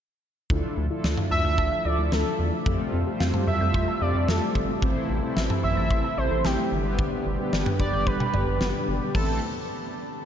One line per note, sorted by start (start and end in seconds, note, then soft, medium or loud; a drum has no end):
0.50 0.62 D2 loud
0.50 2.64 D3 medium
0.50 0.61 D3 medium
0.50 2.64 F3 medium
0.50 6.68 A3 medium
0.50 0.86 D4 medium
0.50 0.86 E4 medium
0.50 0.86 F4 medium
0.50 0.86 A4 loud
0.50 2.64 E5 medium
0.50 kick loud
0.64 0.75 F3 medium
0.77 0.89 D2 loud
0.77 0.88 A3 medium
0.91 1.74 D4 medium
0.91 1.02 E4 medium
0.91 1.74 E4 medium
0.91 1.74 F4 medium
0.91 1.74 A4 loud
1.04 1.16 D2 medium
1.04 1.15 D5 medium
1.04 snare loud
1.17 1.29 F5 medium
1.17 mid tom medium
1.31 1.43 D2 loud
1.31 1.87 E5 loud
1.31 1.42 A5 medium
1.45 1.56 D2 medium
1.45 1.56 E6 medium
1.58 1.70 D2 loud
1.58 1.69 A5 loud
1.58 kick medium
1.72 1.83 F5 medium
1.85 1.97 D2 loud
1.85 2.57 D4 medium
1.85 2.57 E4 medium
1.85 2.57 F4 medium
1.85 2.57 A4 medium
1.85 1.96 D5 medium
1.85 2.14 D5 loud
1.99 2.10 D2 loud
1.99 2.10 E4 medium
2.12 2.24 D2 medium
2.12 2.23 A3 medium
2.12 2.53 A4 medium
2.12 snare loud
2.26 2.37 F3 medium
2.39 2.51 E2 medium
2.39 2.50 D3 medium
2.53 2.64 F3 medium
2.66 2.78 F2 loud
2.66 6.68 C3 medium
2.66 2.77 F3 medium
2.66 4.80 G3 medium
2.66 3.02 C4 medium
2.66 3.02 F4 medium
2.66 4.80 F4 medium
2.66 3.02 G4 medium
2.66 3.02 A4 loud
2.66 kick loud
2.80 2.91 A3 medium
2.93 3.05 F2 loud
2.93 3.04 C4 medium
3.07 3.90 C4 medium
3.07 3.90 F4 medium
3.07 3.90 G4 medium
3.07 3.18 G4 medium
3.07 3.90 C5 loud
3.20 3.32 F2 medium
3.20 3.31 F5 medium
3.20 snare loud
3.34 3.45 A5 medium
3.34 mid tom loud
3.47 3.59 F2 medium
3.47 4.03 E5 loud
3.47 3.58 C6 medium
3.61 3.72 F2 loud
3.61 3.72 G6 medium
3.74 3.86 F2 loud
3.74 3.85 C6 loud
3.74 kick medium
3.88 3.99 A5 medium
4.01 4.13 F2 loud
4.01 4.73 C4 medium
4.01 4.73 F4 medium
4.01 4.73 G4 medium
4.01 4.73 A4 medium
4.01 4.30 D5 loud
4.01 4.12 F5 medium
4.15 4.26 F2 loud
4.15 4.26 G4 medium
4.28 4.40 F2 loud
4.28 4.39 C4 medium
4.28 4.69 A4 medium
4.28 snare loud
4.42 4.53 A3 medium
4.55 4.67 G1 medium
4.55 4.66 F3 medium
4.55 kick medium
4.69 4.80 A3 medium
4.82 4.94 A1 loud
4.82 6.70 E3 medium
4.82 4.93 E3 medium
4.82 5.18 C4 medium
4.82 6.70 E4 medium
4.82 5.18 E4 medium
4.82 5.18 A4 medium
4.82 5.18 C5 loud
4.82 kick loud
4.96 5.07 A3 medium
5.09 5.21 A1 loud
5.09 5.20 C4 medium
5.23 6.07 C4 medium
5.23 6.07 E4 medium
5.23 5.34 A4 medium
5.23 6.07 A4 medium
5.23 6.07 C5 loud
5.37 5.48 A1 loud
5.37 5.47 E5 medium
5.37 snare loud
5.50 5.61 A5 medium
5.50 mid tom loud
5.63 5.75 A1 loud
5.63 6.19 E5 loud
5.63 5.74 C6 medium
5.77 5.89 A1 loud
5.77 5.88 A6 medium
5.90 6.02 A1 loud
5.90 6.01 C6 loud
5.90 kick loud
6.04 6.15 A5 medium
6.17 6.29 A1 loud
6.17 6.72 C4 medium
6.17 6.72 E4 medium
6.17 6.72 A4 medium
6.17 6.46 C5 loud
6.17 6.72 C5 medium
6.17 6.28 E5 medium
6.31 6.43 A1 medium
6.31 6.42 A4 medium
6.44 6.56 A1 loud
6.44 6.56 C4 medium
6.44 6.85 G4 medium
6.44 snare loud
6.58 6.69 A3 medium
6.71 7.06 G1 medium
6.71 9.12 D3 medium
6.71 6.83 D3 medium
6.71 9.12 G3 medium
6.71 9.12 B3 medium
6.71 7.31 B3 medium
6.71 7.31 D4 medium
6.71 9.12 G4 loud
6.71 7.31 G4 medium
6.71 7.31 B4 medium
6.85 6.96 G3 medium
6.99 7.10 D3 loud
6.99 kick loud
7.12 7.23 G3 medium
7.26 7.37 G1 loud
7.26 7.37 B3 medium
7.39 8.23 B3 medium
7.39 8.23 D4 medium
7.39 7.50 G4 medium
7.39 8.23 G4 medium
7.39 8.23 B4 loud
7.53 7.64 G1 loud
7.53 7.64 D5 medium
7.53 snare loud
7.66 7.77 G5 medium
7.66 mid tom loud
7.80 7.91 G1 loud
7.80 8.08 D5 loud
7.80 7.91 B5 loud
7.80 kick loud
7.93 8.05 G1 loud
7.93 8.04 G6 medium
8.06 8.18 G1 loud
8.06 8.88 B4 loud
8.06 8.18 B5 loud
8.06 kick medium
8.20 8.31 G5 medium
8.20 mid tom medium
8.34 8.45 G1 loud
8.34 9.05 B3 medium
8.34 9.05 D4 medium
8.34 9.05 G4 medium
8.34 9.05 B4 medium
8.34 8.45 D5 medium
8.34 mid tom medium
8.47 8.59 G1 loud
8.47 8.58 G4 medium
8.61 8.72 G1 loud
8.61 8.72 B3 medium
8.61 snare loud
8.74 8.85 G3 medium
8.88 8.99 G1 medium
8.88 8.99 D3 medium
9.01 9.12 G3 medium
9.15 9.40 A1 loud
9.15 9.40 E3 medium
9.15 9.40 A3 medium
9.15 9.40 C4 medium
9.15 9.40 E4 medium
9.15 9.40 A4 medium
9.15 9.40 C5 medium
9.15 kick loud
9.15 open hi-hat medium